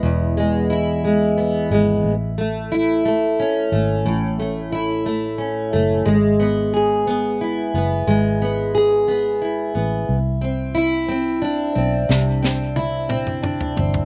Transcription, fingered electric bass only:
X:1
M:6/8
L:1/8
Q:3/8=60
K:E
V:1 name="Fingered electric bass" clef=bass
E,,,4- E,,, G,,, | A,,,4- A,,, G,,, | A,,,4- A,,, F,,, | G,,,4- G,,, F,,, |
G,,,4- G,,, A,,, | =C,,4- C,, B,,, | =C,,4- C,, =G,,, |]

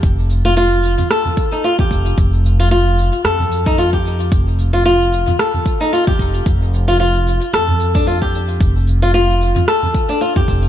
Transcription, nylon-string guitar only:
X:1
M:4/4
L:1/16
Q:"Swing 16ths" 1/4=112
K:Fmix
V:1 name="Nylon-string guitar"
G z2 F F4 A3 E F G3- | G z2 F F4 A3 E F G3- | G z2 F F4 A3 E F G3 | z3 F F4 A3 D F G3- |
G z2 F F4 A3 D F G3 |]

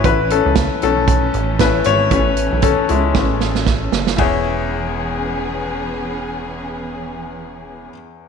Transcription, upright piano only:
X:1
M:4/4
L:1/8
Q:"Swing 16ths" 1/4=116
K:E
V:1 name="Upright piano"
[EB] [CA]2 A3 [EB] [Ec]- | [Ec]2 [CA] [G,E]3 z2 | [EGc]8- | [EGc]8 |]
V:2 name="Upright piano"
z3 [E,A,C]3 [E,A,C] z | [E,A,C]3 z [E,A,C] z3 | E,,8- | E,,8 |]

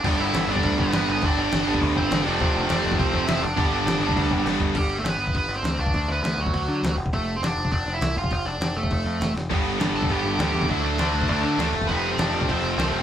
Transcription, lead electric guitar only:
X:1
M:4/4
L:1/16
Q:1/4=202
K:Gmix
V:1 name="Lead electric guitar"
[Dd]2 [Ee]4 [Dd]4 [B,B]4 [B,B]2 | [Dd]8 z2 [Cc]4 [Dd]2- | [Dd]4 [Dd]4 [Cc]4 [Ee]2 [Dd]2- | [Dd]12 z4 |
[G,G]3 [A,A] [B,B]4 [B,B]3 [Cc]3 [Dd]2- | [Dd]2 [B,B]4 [^F,^F]8 z2 | [A,A]3 [Cc] [Dd]4 [Dd]3 [Ee]3 [Ff]2- | [Ff]2 [Dd]4 [A,A]8 z2 |
z6 [Aa]2 [Gg]4 [Gg]4 | [Ee]2 [Dd]12 z2 | [B,B]3 [Cc] [Dd]4 [Cc]8 |]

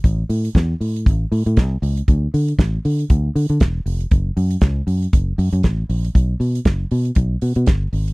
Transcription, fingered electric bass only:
X:1
M:4/4
L:1/16
Q:"Swing 16ths" 1/4=118
K:Bm
V:1 name="Fingered electric bass" clef=bass
A,,,2 A,,2 E,,2 A,,2 A,,,2 A,, A,, =C,,2 ^C,,2 | D,,2 D,2 A,,,2 D,2 D,,2 D, D, E,,,2 =F,,,2 | F,,,2 F,,2 C,,2 F,,2 F,,,2 F,, F,, A,,,2 _B,,,2 | B,,,2 B,,2 F,,,2 B,,2 B,,,2 B,, B,, G,,,2 ^G,,,2 |]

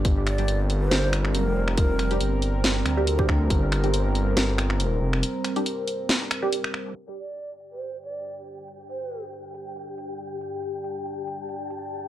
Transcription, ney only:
X:1
M:4/4
L:1/16
Q:"Swing 16ths" 1/4=139
K:Gm
V:1 name="Ney"
z2 d3 z2 c3 z2 B3 z | B3 z12 z | z16 | z16 |
z2 d3 z2 c3 d3 z3 | z2 c3 z8 z3 | z16 |]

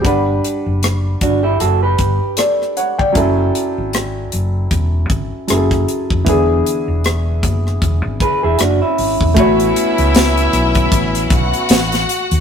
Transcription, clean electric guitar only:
X:1
M:4/4
L:1/16
Q:"Swing 16ths" 1/4=77
K:A
V:1 name="Clean electric guitar"
z6 [DF] [E=G] [FA] [GB]6 z | z16 | z8 z2 [GB] [EG] [DF] [CE]3 | z16 |]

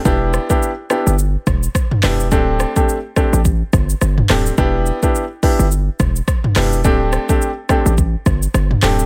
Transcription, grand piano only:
X:1
M:4/4
L:1/16
Q:"Swing 16ths" 1/4=106
K:Em
V:1 name="Grand piano"
[B,DEG]3 [B,DEG] z2 [B,DEG]2 z6 [B,DEG]2 | [A,CDG]3 [A,CDG] z2 [A,CDG]2 z6 [A,CDG]2 | [B,DEG]3 [B,DEG] z2 [B,DEG]2 z6 [B,DEG]2 | [A,CDG]3 [A,CDG] z2 [A,CDG]2 z6 [A,CDG]2 |]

